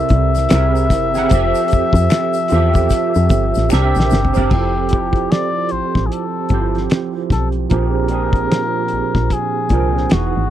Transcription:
Already playing: C3 C4 E4 A4 A#4 D5 E5
0.09 C2, kick, closed hi-hat
0.35 snare, closed hi-hat, shaker
0.49 C2 C3 C4 E4 G#4 A#4, finger snap, snare, closed hi-hat, shaker
0.54 E5
0.76 shaker
0.90 F#1, kick, snare, closed hi-hat, shaker
1.14 C3 C4 E4 G#4 A#4, snare, shaker
1.18 F#5
1.29 F1 F3 C4 G4 A4, kick, closed hi-hat, shaker
1.34 E5
1.55 shaker
1.68 closed hi-hat, shaker
1.73 F2, kick
1.93 F2, kick, closed hi-hat, shaker
2.10 finger snap, snare, closed hi-hat, shaker
2.34 shaker
2.48 C4 F4 G4, closed hi-hat, shaker
2.52 E2 A4 E5
2.74 kick, closed hi-hat, shaker
2.90 kick, closed hi-hat, shaker
3.15 F2, shaker
3.29 G1, kick, closed hi-hat, shaker
3.55 A1, snare, shaker
3.69 C2 C3 C4 D4 G4 A#4, finger snap, shaker
3.73 E5, snare
3.95 A#1, shaker
4.00 snare
4.10 G1, snare, shaker
4.25 floor tom
4.33 F#1 C3 C4 D4 A#4, shaker
4.38 D5, floor tom
4.49 F1 F3 C4 E4 G4, kick, crash
4.53 A4
4.89 F3 C4 E4, closed hi-hat
4.93 G4 C5, kick
5.13 kick, closed hi-hat
5.32 D5, finger snap, snare, closed hi-hat
5.69 A1 C5, closed hi-hat
5.95 A1, kick, snare
6.06 G#4
6.12 A4, closed hi-hat
6.49 G1 F3 C4 E4 G4, kick, closed hi-hat
6.54 C5
6.75 snare, closed hi-hat
6.90 finger snap, snare, closed hi-hat
7.30 B1 A4, kick, snare, closed hi-hat
7.52 closed hi-hat
7.69 A#1 A#2 F3 C4 D4 G4 A#4, kick, closed hi-hat
7.74 G#4
8.08 A#2 F3 C4 D4 G4, closed hi-hat
8.13 G#4
8.33 kick, closed hi-hat
8.51 finger snap, snare, closed hi-hat
8.88 closed hi-hat
8.93 A#1
9.15 A#1, kick, snare
9.30 G#4, kick, closed hi-hat
9.69 C2 A#2 F3 C4 D4, kick, closed hi-hat
9.73 A#4 G5
9.97 snare
10.09 E1 E3 B3 D#4 F#4, finger snap, snare, closed hi-hat
10.14 G#4
10.37 G#1

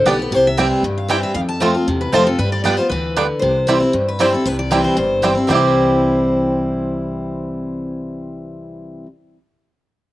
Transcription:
0.05 B1 D3 G3 B3 D4 G4 D5 G5
0.19 B3 G4 B4
0.31 C2 C3 C5
0.47 E5
0.57 E3 G3 C4 E4 C5 G5
0.83 G2
0.98 F5
1.08 E3 G3 C4 E4 C5 G5
1.23 E5
1.34 F2 F5
1.49 A5
1.60 F3 A3 C4 F4 C5 A5
1.74 C4 F4
1.87 E2 C3
2.01 B4
2.12 F2 F3 A3 C4 F4 C5 A5
2.26 C4 F4 A4
2.39 G2 G3 B4
2.52 D5
2.64 G3 B3 D4 F4 B4 D5 G5
2.77 B3 F4 C5
2.90 D2 E3 B4
3.16 D3 G3 B3 D4 F4 B4 G5
3.39 C2 C3 C5
3.67 E3 G3 C4 E4 C5 G5
3.80 C4 E4
3.93 G2
4.08 B4
4.19 E3 G3 C4 E4 C5 G5
4.32 C4 E4 A4
4.46 C2 C3 B4
4.59 D5
4.71 E3 G3 C4 E4 C5 G5
4.84 C5
4.97 G1 G2 C5
5.22 E3 G3 C4 E4 C5 G5
5.35 C4 E4
5.47 C2 C3 E3 G3 C4 E4 C5 G5
5.53 E4 G4

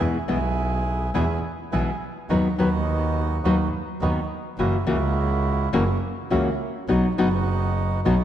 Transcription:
0.00 E2 B2 E3 G#3 B3 E4 G#4
0.28 B1 B2 E3 G#3 B3 E4 G#4
1.14 E2 B2 E3 G#3 B3 E4 G#4
1.72 B1 B2 E3 G#3 B3 E4 G#4
2.29 D#2 D#3 F#3 B3 D#4 F#4 B4
2.58 D#2 D#3 F#3 B3 D#4 F#4 B4
3.44 D#2 D#3 F#3 B3 D#4 F#4 B4
4.01 D#2 D#3 F#3 B3 D#4 F#4 B4
4.58 F#1 C#3 E3 A#3 C#4 E4 F#4
4.87 C#2 C#3 E3 A#3 C#4 E4 F#4
5.73 F#1 C#3 E3 A#3 C#4 E4 F#4
6.30 C#2 C#3 E3 A#3 C#4 E4 F#4
6.88 B1 B2 F#3 B3 D#4 F#4
7.17 F#1 B2 F#3 B3 D#4 F#4
8.04 B1 B2 F#3 B3 D#4 F#4

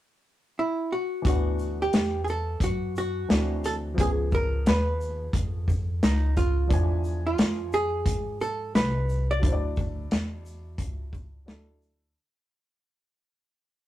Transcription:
0.59 E4
0.92 F#4
1.22 D2 E3 B3, kick, closed hi-hat
1.26 D4 F#4 F#5
1.59 shaker
1.82 G4
1.93 E2, snare, closed hi-hat
2.24 G#4, shaker
2.30 A4
2.60 F#2 F#4, kick, closed hi-hat
2.96 F#4, shaker
3.29 D2 E3 C4 D4 F#4, snare, closed hi-hat
3.64 A4, closed hi-hat, shaker
3.94 C#2 F3 B3, kick
3.98 C#4 G4 G#4, closed hi-hat
4.07 G#4
4.32 A#4, kick, shaker
4.66 D#2 B4, snare, closed hi-hat
5.01 shaker
5.33 F2, kick, closed hi-hat
5.68 kick, shaker
6.03 C#2 D#4, snare, closed hi-hat
6.37 F4, kick, closed hi-hat, shaker
6.67 E2 F3 D4, kick, closed hi-hat
6.71 E3 G#5
7.04 shaker
7.27 F4
7.38 snare, closed hi-hat
7.73 G#4, shaker
8.06 G#2, kick, closed hi-hat
8.41 A4, shaker
8.75 C2 B4, snare, closed hi-hat
9.09 shaker
9.31 D5
9.39 D2 F#3 D4, kick, closed hi-hat
9.44 E4 C5
9.52 D5
9.77 kick, shaker
10.11 E2, snare, closed hi-hat
10.46 shaker
10.78 C#2, kick, closed hi-hat
11.13 kick, shaker
11.46 D2 F#3 D4 E4 A4, snare, closed hi-hat
11.82 shaker

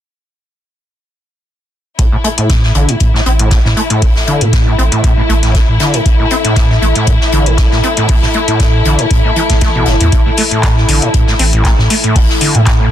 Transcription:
1.99 A1 A2 E4, kick, closed hi-hat
2.12 A2
2.24 A3, closed hi-hat
2.38 A2, closed hi-hat
2.50 E3, kick, snare, closed hi-hat
2.63 snare
2.75 A1 D3, closed hi-hat
2.89 A2 A4, closed hi-hat
3.00 A2, kick, closed hi-hat
3.14 A2, snare
3.22 A1 C4 A5, closed hi-hat
3.39 A2, closed hi-hat
3.51 A2, kick, snare, closed hi-hat
3.65 A2, snare
3.77 A3, closed hi-hat
3.90 A2, closed hi-hat
4.02 A1 E3, kick, closed hi-hat, open hi-hat
4.16 snare
4.27 D3, closed hi-hat
4.41 A2, closed hi-hat
4.53 kick, snare, closed hi-hat
4.67 A2
4.78 A1 C4, closed hi-hat
4.92 A2, closed hi-hat
5.04 A2, kick, closed hi-hat
5.17 A2
5.29 A1 A3, closed hi-hat
5.43 A2, snare, closed hi-hat
5.55 E3, kick, snare, closed hi-hat
5.68 A2
5.80 D3, snare, closed hi-hat
5.94 A2, closed hi-hat
6.06 A1, kick, closed hi-hat
6.19 A2
6.31 C4, closed hi-hat
6.45 A2, closed hi-hat
6.56 A2, kick, snare, closed hi-hat
6.70 A2, snare
6.82 A1 A3, closed hi-hat
6.95 A2, closed hi-hat
7.07 A2 E3, kick, closed hi-hat
7.21 snare
7.32 A1 D3, closed hi-hat
7.46 A2, closed hi-hat
7.57 kick, snare, closed hi-hat
7.71 A2, snare
7.83 C4, closed hi-hat
7.97 A2, closed hi-hat
8.08 A1 A2, kick, closed hi-hat, open hi-hat
8.22 A2, snare
8.34 A3, closed hi-hat
8.48 A2, closed hi-hat
8.60 E3, kick, snare, closed hi-hat
8.85 A1 D3, closed hi-hat
8.99 A2, closed hi-hat
9.11 A2, kick, closed hi-hat
9.13 closed hi-hat
9.24 A2
9.36 E3, closed hi-hat
9.50 A1 A2, kick, snare, closed hi-hat
9.61 A3, kick, snare, closed hi-hat
9.75 B2
9.86 G1 A2, snare, closed hi-hat
10.00 E2 A2, closed hi-hat
10.12 A1 A2, kick, closed hi-hat
10.26 A2
10.37 A3, closed hi-hat, open hi-hat
10.51 A2, closed hi-hat
10.63 E3, kick, snare, clap, closed hi-hat
10.77 snare
10.88 A1 D3, closed hi-hat, open hi-hat
11.02 A2, closed hi-hat
11.14 A2, kick, closed hi-hat
11.27 A2, snare
11.39 A1 C4, closed hi-hat, open hi-hat
11.53 A2, closed hi-hat
11.65 A2, kick, snare, clap, closed hi-hat
11.78 A2, snare
11.90 A3, closed hi-hat, open hi-hat
12.04 A2, closed hi-hat
12.16 A1 E3, kick, closed hi-hat, open hi-hat
12.30 snare
12.41 D3, closed hi-hat, open hi-hat
12.55 A2, closed hi-hat
12.66 kick, snare, clap, closed hi-hat
12.80 A2

